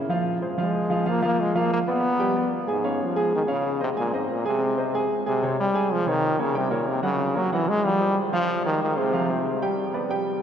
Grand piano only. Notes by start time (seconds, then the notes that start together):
0.09 F3 F4 F5
0.41 G#3 G#4 C5
0.58 F3 F4 F5
0.90 F3 F4 F5
1.06 F3 F4 F5
1.22 F3 F4 F5
1.55 F3 F4 F5
1.87 B3 B4 D5
2.19 G3 G4 G5
2.36 B3 B4 D5
2.67 G#3 G#4 G#5
2.84 C#4 C#5 F5
3.16 G#3 G#4 G#5
3.47 C#4 C#5 F5
3.80 C4 C5 D#5
3.96 G#3 G#4 G#5
4.13 C4 C5 D#5
4.45 G#3 G#4 G#5
4.78 C4 C5 D#5
4.94 G#3 G#4 G#5
5.26 G#3 G#4 G#5
5.42 C3 C5 C#5
5.74 G#3 G#4 G#5
6.06 C3 C5 C#5
6.38 A#3 A#4 C#5
6.55 G3 G4 G5
6.71 A#3 A#4 C#5
7.03 F#3 F#4 F#5
7.35 A#3 A#4 C#5
7.52 F#3 F#4 F#5
7.85 F3 F4 F5
8.00 G#3 G#4 C5
8.33 F3 F4 F5
8.64 G#3 G#4 C5
8.97 G#3 G#4 C5
9.13 F3 F4 F5
9.29 G#3 G#4 C5
9.62 G3 G4 G5
9.94 B3 B4 D5
10.09 G3 G4 G5